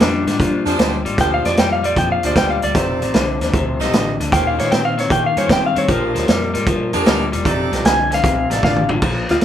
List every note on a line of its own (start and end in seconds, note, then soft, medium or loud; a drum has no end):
0.00 0.25 F2 medium
0.00 0.25 A#2 medium
0.00 0.25 G3 medium
0.00 0.11 D4 medium
0.00 0.77 D4 loud
0.00 0.11 G4 medium
0.00 0.11 G#4 medium
0.00 0.11 C5 medium
0.00 snare loud
0.00 closed hi-hat medium
0.27 0.39 G#2 medium
0.27 0.38 A#2 medium
0.27 0.39 G3 medium
0.27 snare soft
0.27 closed hi-hat medium
0.40 0.64 G2 medium
0.40 0.64 A#2 medium
0.40 0.64 F3 medium
0.40 kick loud
0.40 closed hi-hat medium
0.66 0.78 F2 medium
0.66 0.78 A#2 medium
0.66 0.78 F3 medium
0.66 1.00 D4 medium
0.66 1.00 G4 medium
0.66 1.01 G#4 medium
0.66 1.01 C5 loud
0.66 closed hi-hat medium
0.78 1.03 D2 medium
0.78 1.03 A#2 medium
0.78 1.03 G3 medium
0.78 snare loud
0.78 closed hi-hat medium
1.05 1.17 G#1 medium
1.05 1.17 A#2 medium
1.05 1.17 G3 medium
1.05 closed hi-hat medium
1.18 1.43 D2 medium
1.18 1.42 A#2 medium
1.18 1.42 F3 loud
1.18 1.68 D4 medium
1.18 1.69 G4 medium
1.18 1.69 G#4 medium
1.18 1.69 C5 medium
1.18 1.32 G5 medium
1.18 kick loud
1.18 snare soft
1.18 closed hi-hat medium
1.34 1.45 F5 medium
1.45 1.57 F2 medium
1.45 1.56 A#2 medium
1.45 1.57 F3 medium
1.45 1.58 D5 medium
1.45 snare soft
1.45 closed hi-hat medium
1.57 1.94 F2 medium
1.57 1.81 A#2 medium
1.57 1.82 G3 medium
1.57 1.71 G5 medium
1.57 snare loud
1.57 closed hi-hat medium
1.72 1.84 F5 medium
1.83 1.95 A#2 medium
1.83 1.95 G3 medium
1.83 1.97 D5 medium
1.83 closed hi-hat medium
1.96 2.21 F2 medium
1.96 2.20 A#2 medium
1.96 2.21 F3 medium
1.96 2.10 G5 medium
1.96 kick loud
1.96 closed hi-hat medium
2.12 2.24 F5 medium
2.23 2.35 D2 medium
2.23 2.35 A#2 medium
2.23 2.35 F3 medium
2.23 2.58 D4 medium
2.23 2.58 G4 medium
2.23 2.58 G#4 medium
2.23 2.58 C5 medium
2.23 2.38 D5 medium
2.23 closed hi-hat medium
2.35 2.60 D2 medium
2.35 2.60 A#2 medium
2.35 2.60 G3 medium
2.35 2.50 G5 medium
2.35 kick medium
2.35 snare loud
2.35 closed hi-hat medium
2.50 2.62 F5 medium
2.62 2.75 D2 medium
2.62 2.74 A#2 medium
2.62 2.75 G3 medium
2.62 2.76 D5 medium
2.62 closed hi-hat medium
2.75 3.00 F1 medium
2.75 2.99 F2 medium
2.75 2.99 C3 medium
2.75 3.25 D#4 medium
2.75 3.25 G4 medium
2.75 3.25 A4 medium
2.75 3.90 C5 loud
2.75 3.25 D5 medium
2.75 kick loud
2.75 snare soft
2.75 closed hi-hat medium
3.02 3.13 A1 medium
3.02 3.13 F2 medium
3.02 3.13 C3 medium
3.02 closed hi-hat medium
3.14 3.39 C2 medium
3.14 3.38 F2 medium
3.14 3.39 D3 medium
3.14 snare loud
3.14 closed hi-hat medium
3.41 3.52 D#2 medium
3.41 3.53 F2 medium
3.41 3.53 D3 medium
3.41 snare soft
3.41 closed hi-hat medium
3.53 3.78 D2 medium
3.53 3.78 F2 medium
3.53 3.78 C3 loud
3.53 kick loud
3.53 closed hi-hat medium
3.79 3.91 C2 medium
3.79 3.92 F2 medium
3.79 3.92 C3 medium
3.79 4.14 D#4 medium
3.79 4.14 G4 medium
3.79 4.14 A4 medium
3.79 4.14 D#5 loud
3.79 snare soft
3.79 closed hi-hat medium
3.92 4.17 A1 medium
3.92 4.17 F2 medium
3.92 4.17 D3 medium
3.92 snare loud
3.92 closed hi-hat medium
4.19 4.31 D2 medium
4.19 4.31 F2 medium
4.19 4.31 D3 loud
4.19 closed hi-hat medium
4.32 4.57 D#2 medium
4.32 4.56 D#3 medium
4.32 4.56 A#3 medium
4.32 4.82 C#4 medium
4.32 4.82 F4 medium
4.32 4.82 G4 medium
4.32 4.82 C5 medium
4.32 4.45 G5 medium
4.32 kick loud
4.32 snare soft
4.32 closed hi-hat medium
4.47 4.59 F5 medium
4.59 4.70 A#2 medium
4.59 4.70 D#3 medium
4.59 4.70 A#3 medium
4.59 4.72 C#5 medium
4.59 snare soft
4.59 closed hi-hat medium
4.71 5.07 A#2 medium
4.71 4.95 D#3 medium
4.71 4.95 C4 medium
4.71 4.84 G5 medium
4.71 snare loud
4.71 closed hi-hat medium
4.85 4.97 F5 medium
4.98 5.09 D#3 medium
4.98 5.09 C4 medium
4.98 5.11 C#5 medium
4.98 snare soft
4.98 closed hi-hat medium
5.10 5.35 A#2 medium
5.10 5.34 D#3 medium
5.10 5.34 A#3 medium
5.10 5.24 G5 medium
5.10 kick loud
5.10 closed hi-hat medium
5.26 5.38 F5 medium
5.36 5.48 G2 medium
5.36 5.48 D#3 medium
5.36 5.49 A#3 medium
5.36 5.71 C#4 medium
5.36 5.71 F4 medium
5.36 5.71 G4 medium
5.36 5.71 C5 medium
5.36 5.50 C#5 medium
5.36 closed hi-hat medium
5.49 5.74 G2 medium
5.49 5.73 D#3 medium
5.49 5.74 C4 loud
5.49 5.64 G5 medium
5.49 kick medium
5.49 snare loud
5.49 closed hi-hat medium
5.66 5.77 F5 medium
5.76 5.88 G2 medium
5.76 5.87 D#3 medium
5.76 5.88 C4 medium
5.76 5.90 C#5 medium
5.76 closed hi-hat medium
5.88 6.13 A#1 medium
5.88 6.12 A#2 medium
5.88 6.13 F3 loud
5.88 6.38 D4 medium
5.88 6.38 G4 medium
5.88 6.39 G#4 medium
5.88 7.04 A#4 loud
5.88 6.39 C5 medium
5.88 kick loud
5.88 closed hi-hat medium
6.14 6.27 D2 medium
6.14 6.26 A#2 medium
6.14 6.27 F3 medium
6.14 snare soft
6.14 closed hi-hat medium
6.28 6.52 F2 medium
6.28 6.52 A#2 medium
6.28 6.52 G3 medium
6.28 snare loud
6.28 closed hi-hat medium
6.54 6.66 G#2 medium
6.54 6.65 A#2 medium
6.54 6.66 G3 medium
6.54 closed hi-hat medium
6.66 6.91 G2 medium
6.66 6.91 A#2 medium
6.66 6.91 F3 loud
6.66 kick loud
6.66 closed hi-hat medium
6.93 7.06 F2 medium
6.93 7.05 A#2 medium
6.93 7.05 F3 medium
6.93 7.27 D4 loud
6.93 7.28 G4 medium
6.93 7.28 G#4 medium
6.93 7.28 A#4 loud
6.93 closed hi-hat medium
7.06 7.31 D2 medium
7.06 7.30 A#2 medium
7.06 7.30 G3 loud
7.06 snare loud
7.06 closed hi-hat medium
7.32 7.44 E1 medium
7.32 7.44 A#2 medium
7.32 7.44 G3 medium
7.32 closed hi-hat medium
7.45 7.70 F1 medium
7.45 7.70 F2 medium
7.45 7.70 C3 medium
7.45 7.95 D#4 medium
7.45 7.95 G4 medium
7.45 7.96 A4 medium
7.45 7.96 D5 medium
7.45 kick loud
7.45 closed hi-hat medium
7.72 7.84 C2 medium
7.72 7.83 F2 medium
7.72 7.84 C3 medium
7.72 snare soft
7.72 closed hi-hat medium
7.84 8.20 C2 medium
7.84 8.09 F2 medium
7.84 8.09 D3 medium
7.84 8.11 G#5 loud
7.84 snare loud
7.84 closed hi-hat medium
8.11 8.22 F2 medium
8.11 8.23 D3 medium
8.11 8.63 F5 medium
8.11 snare soft
8.11 closed hi-hat medium
8.24 8.48 C2 medium
8.24 8.48 F2 medium
8.24 8.48 C3 medium
8.24 kick loud
8.24 closed hi-hat medium
8.50 8.62 A1 medium
8.50 8.62 F2 medium
8.50 8.62 C3 medium
8.50 8.84 D#4 medium
8.50 8.84 G4 medium
8.50 8.84 A4 medium
8.50 8.85 D5 medium
8.50 snare soft
8.50 closed hi-hat medium
8.63 8.87 A1 medium
8.63 8.87 F2 medium
8.63 8.87 D3 loud
8.63 8.89 F5 loud
8.63 kick medium
8.63 snare medium
8.76 mid tom medium
8.89 9.01 A1 medium
8.89 9.01 F2 medium
8.89 9.01 D3 medium
8.89 floor tom loud
9.02 9.26 A#1 medium
9.02 9.26 A#2 medium
9.02 9.26 F3 medium
9.02 kick loud
9.02 crash loud
9.29 9.40 D2 medium
9.29 9.40 A#2 medium
9.29 9.40 F3 medium
9.29 9.36 F4 medium
9.29 snare soft
9.29 closed hi-hat medium
9.41 9.45 F2 medium
9.41 closed hi-hat medium